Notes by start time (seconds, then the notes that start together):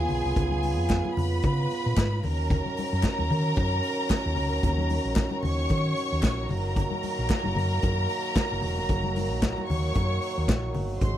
Already playing: C#3 B3 F4 G#4 G#5
0.09 B1, open hi-hat, low conga
0.25 C2
0.36 C#2, kick, closed hi-hat, muted conga, low conga
0.51 high conga
0.63 open hi-hat, high conga
0.79 F2
0.90 kick, snare, clap, closed hi-hat
1.05 high conga
1.17 F2 B4 B5, open hi-hat, low conga
1.42 C#3, kick, closed hi-hat
1.70 open hi-hat, muted conga
1.86 A#2
1.97 G#2, kick, snare, clap, closed hi-hat
2.23 D#2 D#3 F#3 C#4 A#4 A#5, open hi-hat, muted conga, low conga
2.50 kick, closed hi-hat, low conga
2.66 high conga
2.77 open hi-hat, high conga
2.93 F#2
3.03 kick, snare, clap, closed hi-hat
3.19 D#2, high conga
3.30 D#3, open hi-hat, muted conga, low conga
3.56 F#2, kick, closed hi-hat, muted conga
3.83 open hi-hat
4.10 kick, snare, clap, closed hi-hat
4.26 D#2
4.36 C#2, open hi-hat, low conga
4.52 D2
4.63 D#2, kick, closed hi-hat, low conga
4.78 high conga
4.89 open hi-hat, muted conga, high conga
5.05 A#1
5.16 kick, snare, clap, closed hi-hat
5.31 high conga
5.43 D#2 C#5 C#6, open hi-hat, muted conga, low conga
5.69 D#3, kick, closed hi-hat
5.96 open hi-hat, muted conga
6.12 D#2
6.22 A#1, kick, snare, clap, closed hi-hat, muted conga
6.49 F#1 A#3 A#4 A#5, open hi-hat, low conga
6.76 kick, closed hi-hat, low conga
6.91 high conga
7.03 open hi-hat, muted conga, high conga
7.19 A#1
7.29 kick, snare, clap, closed hi-hat, muted conga
7.44 F#1, high conga
7.55 F#2, open hi-hat, muted conga, low conga
7.82 F#2, kick, closed hi-hat
8.09 open hi-hat, muted conga
8.35 kick, snare, clap, closed hi-hat, muted conga
8.52 F#1
8.61 E1, open hi-hat, muted conga, low conga
8.78 F1
8.89 F#1, kick, closed hi-hat, muted conga, low conga
9.04 high conga
9.16 open hi-hat, muted conga, high conga
9.31 A#1
9.42 kick, snare, clap, closed hi-hat, muted conga
9.58 high conga
9.68 D#2 C#5 C#6, open hi-hat, muted conga, low conga
9.94 F#2, kick, closed hi-hat, muted conga
10.22 open hi-hat
10.38 D#2
10.48 A#1, kick, snare, clap, closed hi-hat
10.74 G1, open hi-hat, muted conga, low conga
11.01 G#1 C3 G#3 C5 C6, kick, closed hi-hat, muted conga, low conga